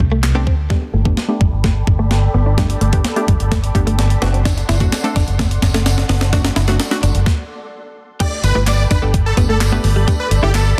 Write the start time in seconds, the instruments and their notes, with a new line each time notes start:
Already playing: synth pluck A3 C4 D4 G4
0.00 fingered electric bass C2, kick
0.12 clean electric guitar A3
0.23 muted clean electric guitar stroke, snare, clap
0.35 synth pluck A3 C4 D4 G4, clean electric guitar B3
0.47 fingered electric bass D2, clean electric guitar C4, kick
0.70 clean electric guitar G3, synth pluck A3 B3 D4 G4, string machine A4 D5 G5 B5, kick, snare
0.82 muted clean electric guitar stroke
0.94 fingered electric bass G1, clean electric guitar A3
1.05 synth pluck A3 B3 D4 G4, kick
1.17 snare
1.28 synth pluck A3 B3 D4 G4
1.41 fingered electric bass G1, clean electric guitar G3, kick
1.52 fingered electric bass G1
1.64 clean electric guitar A3, kick, snare
1.87 fingered electric bass G1, muted clean electric guitar stroke, kick
1.99 clean electric guitar A3
2.11 muted clean electric guitar stroke, snare
2.34 fingered electric bass G1, clean electric guitar B3
2.46 clean electric guitar D4
2.57 clean electric guitar G3, synth pluck A3 B3 D4 G4, kick, snare, closed hi-hat
2.70 muted clean electric guitar stroke, closed hi-hat
2.81 fingered electric bass G1, clean electric guitar A3, closed hi-hat
2.93 synth pluck A3 B3 D4 G4, kick, closed hi-hat
3.04 snare, closed hi-hat
3.16 synth pluck A3 B3 D4 G4, closed hi-hat
3.28 fingered electric bass G1, clean electric guitar G3, kick, closed hi-hat
3.40 fingered electric bass G1, closed hi-hat
3.51 clean electric guitar A3, kick, snare, closed hi-hat
3.64 closed hi-hat
3.75 fingered electric bass G1, synth pluck A3 B3 D4 G4, muted clean electric guitar stroke, kick, closed hi-hat
3.87 clean electric guitar A3, closed hi-hat
3.98 muted clean electric guitar stroke, snare, closed hi-hat
4.10 closed hi-hat
4.22 fingered electric bass F#1, synth pluck A3 C4 D4 F#4, clean electric guitar B3, string machine F#5 C6, snare, closed hi-hat
4.33 clean electric guitar C4, closed hi-hat
4.45 clean electric guitar D4, kick, snare, closed hi-hat, tambourine
4.57 muted clean electric guitar stroke, closed hi-hat
4.69 fingered electric bass F#1, clean electric guitar E4, snare, closed hi-hat, tambourine
4.80 synth pluck A3 C4 D4 F#4, kick, closed hi-hat
4.92 snare, closed hi-hat, tambourine
5.04 synth pluck A3 C4 D4 A4, closed hi-hat
5.16 fingered electric bass F#1, clean electric guitar D4, kick, snare, closed hi-hat, tambourine
5.27 fingered electric bass F#1, closed hi-hat
5.39 clean electric guitar A3, kick, snare, closed hi-hat, tambourine
5.51 closed hi-hat
5.62 fingered electric bass F#1, muted clean electric guitar stroke, kick, snare, closed hi-hat, tambourine
5.74 clean electric guitar A3, snare, closed hi-hat
5.86 muted clean electric guitar stroke, snare, closed hi-hat, tambourine
5.98 snare, closed hi-hat
6.09 fingered electric bass F#1, clean electric guitar B3, snare, open hi-hat
6.21 clean electric guitar C4, snare, closed hi-hat
6.32 synth pluck A3 C4 D4 F#4, clean electric guitar D4, kick, snare, closed hi-hat, tambourine
6.45 muted clean electric guitar stroke, snare, closed hi-hat
6.56 fingered electric bass F#1, clean electric guitar E4, snare, closed hi-hat, tambourine
6.68 synth pluck A3 C4 D4 F#4, snare, closed hi-hat
6.80 snare, closed hi-hat, tambourine
6.91 synth pluck A3 C4 D4 F#4, snare, closed hi-hat
7.03 fingered electric bass F#1, clean electric guitar D4, closed hi-hat, tambourine
7.15 fingered electric bass F#1, closed hi-hat
7.26 kick, snare
8.20 synth pluck A3 B3 D4 G4 A4, clean electric guitar G4, string machine A4 D5 G5 B5, supersaw synth D5, kick, closed hi-hat, crash, tambourine
8.44 fingered electric bass G1, supersaw synth B4, muted clean electric guitar stroke, closed hi-hat, tambourine
8.55 fingered electric bass G1, synth pluck A3 B3 D4 G4 B4, clean electric guitar E4
8.67 supersaw synth D5, snare, clap, closed hi-hat, tambourine
8.91 fingered electric bass G1, clean electric guitar D4, supersaw synth B4, kick, closed hi-hat, tambourine
9.02 fingered electric bass G1, synth pluck A3 B3 D4 G4 A4
9.14 muted clean electric guitar stroke, kick, closed hi-hat
9.26 supersaw synth A4
9.37 fingered electric bass G1, synth pluck A3 B3 D4 G4 B4, clean electric guitar B3, kick, closed hi-hat, tambourine
9.49 clean electric guitar A3, supersaw synth A4
9.61 snare, clap, closed hi-hat, tambourine
9.72 synth pluck A3 B3 D4 G4 B4, clean electric guitar B3
9.84 fingered electric bass G1, muted clean electric guitar stroke, open hi-hat
9.96 clean electric guitar G3
10.07 synth pluck A3 B3 D4 G4 B4, clean electric guitar G4, string machine A5, kick, closed hi-hat, tambourine
10.20 supersaw synth B4
10.31 fingered electric bass G1, muted clean electric guitar stroke, closed hi-hat, tambourine
10.42 fingered electric bass G1, synth pluck A3 B3 D4 G4 A4, clean electric guitar E4, supersaw synth G4
10.54 supersaw synth A4, snare, clap, closed hi-hat, tambourine